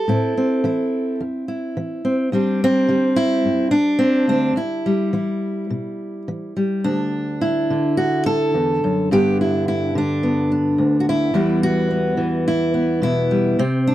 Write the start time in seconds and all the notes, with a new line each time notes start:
Already playing: A4
0.08 A2 C4 E4
0.37 C4
0.64 E3 E4
1.21 E2
1.48 E4
1.77 E3
2.05 C4
2.32 D2 G3 C4 D4
2.64 C4
2.88 D3 G3
3.16 E4
3.45 G2
3.71 D4
3.99 C4
4.28 D2 D4
4.56 E2 E4
4.86 G3
5.13 E3 E4
5.70 B2
6.28 E3
6.57 G3
6.84 D2 D4
7.41 E4
7.70 D3
7.97 F#4
8.26 A4
8.54 E2
8.84 F#2
9.11 G2 D3 B3 D4 G4
9.41 E4
9.68 E4
9.95 D3 D4
10.23 B3
10.52 D4
10.78 D2
11.00 F#4
11.09 E4
11.34 E2 E3 G3 B3
11.63 F#4
11.91 B3
12.17 E3
12.48 E4
12.74 B3
13.02 B2 E4
13.31 G3
13.59 C3 C4
13.87 D4